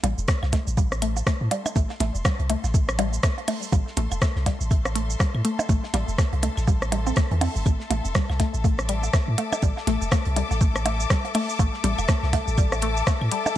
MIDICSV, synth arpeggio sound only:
0, 0, Header, 1, 2, 480
1, 0, Start_track
1, 0, Key_signature, 0, "minor"
1, 0, Tempo, 491803
1, 1717, Time_signature, 4, 2, 24, 8
1, 13250, End_track
2, 0, Start_track
2, 0, Title_t, "Synth arpeggio sound"
2, 0, Program_c, 0, 84
2, 36, Note_on_c, 0, 55, 77
2, 62, Note_off_c, 0, 55, 0
2, 277, Note_on_c, 0, 57, 84
2, 340, Note_off_c, 0, 57, 0
2, 516, Note_on_c, 0, 57, 76
2, 580, Note_off_c, 0, 57, 0
2, 758, Note_on_c, 0, 55, 80
2, 783, Note_off_c, 0, 55, 0
2, 997, Note_on_c, 0, 57, 78
2, 1061, Note_off_c, 0, 57, 0
2, 1237, Note_on_c, 0, 57, 81
2, 1301, Note_off_c, 0, 57, 0
2, 1477, Note_on_c, 0, 55, 74
2, 1502, Note_off_c, 0, 55, 0
2, 1717, Note_on_c, 0, 57, 83
2, 1781, Note_off_c, 0, 57, 0
2, 1957, Note_on_c, 0, 57, 76
2, 2021, Note_off_c, 0, 57, 0
2, 2197, Note_on_c, 0, 55, 82
2, 2222, Note_off_c, 0, 55, 0
2, 2438, Note_on_c, 0, 57, 76
2, 2501, Note_off_c, 0, 57, 0
2, 2678, Note_on_c, 0, 57, 81
2, 2741, Note_off_c, 0, 57, 0
2, 2916, Note_on_c, 0, 55, 77
2, 2942, Note_off_c, 0, 55, 0
2, 3157, Note_on_c, 0, 57, 82
2, 3221, Note_off_c, 0, 57, 0
2, 3397, Note_on_c, 0, 57, 75
2, 3461, Note_off_c, 0, 57, 0
2, 3636, Note_on_c, 0, 55, 81
2, 3662, Note_off_c, 0, 55, 0
2, 3876, Note_on_c, 0, 57, 77
2, 3941, Note_off_c, 0, 57, 0
2, 4116, Note_on_c, 0, 57, 83
2, 4181, Note_off_c, 0, 57, 0
2, 4356, Note_on_c, 0, 55, 78
2, 4382, Note_off_c, 0, 55, 0
2, 4596, Note_on_c, 0, 57, 81
2, 4660, Note_off_c, 0, 57, 0
2, 4836, Note_on_c, 0, 57, 76
2, 4900, Note_off_c, 0, 57, 0
2, 5076, Note_on_c, 0, 55, 83
2, 5102, Note_off_c, 0, 55, 0
2, 5316, Note_on_c, 0, 57, 74
2, 5380, Note_off_c, 0, 57, 0
2, 5556, Note_on_c, 0, 57, 81
2, 5620, Note_off_c, 0, 57, 0
2, 5796, Note_on_c, 0, 55, 78
2, 5822, Note_off_c, 0, 55, 0
2, 6036, Note_on_c, 0, 57, 81
2, 6100, Note_off_c, 0, 57, 0
2, 6276, Note_on_c, 0, 57, 78
2, 6340, Note_off_c, 0, 57, 0
2, 6516, Note_on_c, 0, 55, 83
2, 6542, Note_off_c, 0, 55, 0
2, 6756, Note_on_c, 0, 55, 77
2, 6799, Note_off_c, 0, 55, 0
2, 6898, Note_on_c, 0, 60, 77
2, 6942, Note_off_c, 0, 60, 0
2, 6997, Note_on_c, 0, 57, 83
2, 7022, Note_off_c, 0, 57, 0
2, 7138, Note_on_c, 0, 52, 78
2, 7183, Note_off_c, 0, 52, 0
2, 7236, Note_on_c, 0, 60, 76
2, 7300, Note_off_c, 0, 60, 0
2, 7476, Note_on_c, 0, 57, 81
2, 7540, Note_off_c, 0, 57, 0
2, 7717, Note_on_c, 0, 57, 76
2, 7780, Note_off_c, 0, 57, 0
2, 7957, Note_on_c, 0, 55, 83
2, 7982, Note_off_c, 0, 55, 0
2, 8196, Note_on_c, 0, 57, 78
2, 8260, Note_off_c, 0, 57, 0
2, 8436, Note_on_c, 0, 57, 82
2, 8500, Note_off_c, 0, 57, 0
2, 8677, Note_on_c, 0, 55, 74
2, 8702, Note_off_c, 0, 55, 0
2, 8917, Note_on_c, 0, 57, 84
2, 8981, Note_off_c, 0, 57, 0
2, 9157, Note_on_c, 0, 57, 75
2, 9221, Note_off_c, 0, 57, 0
2, 9397, Note_on_c, 0, 55, 82
2, 9422, Note_off_c, 0, 55, 0
2, 9636, Note_on_c, 0, 57, 78
2, 9700, Note_off_c, 0, 57, 0
2, 9876, Note_on_c, 0, 57, 82
2, 9940, Note_off_c, 0, 57, 0
2, 10117, Note_on_c, 0, 55, 77
2, 10142, Note_off_c, 0, 55, 0
2, 10357, Note_on_c, 0, 57, 81
2, 10421, Note_off_c, 0, 57, 0
2, 10597, Note_on_c, 0, 57, 75
2, 10661, Note_off_c, 0, 57, 0
2, 10837, Note_on_c, 0, 55, 81
2, 10862, Note_off_c, 0, 55, 0
2, 11077, Note_on_c, 0, 57, 76
2, 11141, Note_off_c, 0, 57, 0
2, 11317, Note_on_c, 0, 57, 83
2, 11381, Note_off_c, 0, 57, 0
2, 11557, Note_on_c, 0, 55, 78
2, 11582, Note_off_c, 0, 55, 0
2, 11797, Note_on_c, 0, 57, 83
2, 11861, Note_off_c, 0, 57, 0
2, 12036, Note_on_c, 0, 57, 79
2, 12100, Note_off_c, 0, 57, 0
2, 12277, Note_on_c, 0, 55, 83
2, 12302, Note_off_c, 0, 55, 0
2, 12517, Note_on_c, 0, 57, 78
2, 12581, Note_off_c, 0, 57, 0
2, 12756, Note_on_c, 0, 57, 84
2, 12820, Note_off_c, 0, 57, 0
2, 12997, Note_on_c, 0, 55, 77
2, 13022, Note_off_c, 0, 55, 0
2, 13250, End_track
0, 0, End_of_file